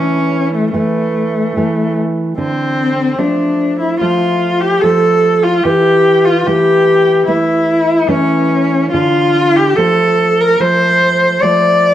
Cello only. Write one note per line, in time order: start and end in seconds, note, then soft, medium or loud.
0.00 0.53 C#4 soft
0.54 0.74 A3 soft
0.74 1.96 A3 soft
2.38 3.20 C4 medium
3.18 3.79 D4 soft
3.80 4.00 E4 soft
4.00 4.62 F4 soft
4.61 4.82 G4 medium
4.80 5.45 A4 medium
5.43 5.64 F4 soft
5.63 6.26 G4 medium
6.25 6.48 F4 soft
6.46 7.26 G4 medium
7.27 8.10 E4 medium
8.09 8.91 C#4 medium
8.92 9.57 F4 medium
9.56 9.77 G4 medium
9.75 10.42 A4 medium
10.40 10.62 A#4 medium
10.61 11.44 C5 medium
11.42 11.94 D5 medium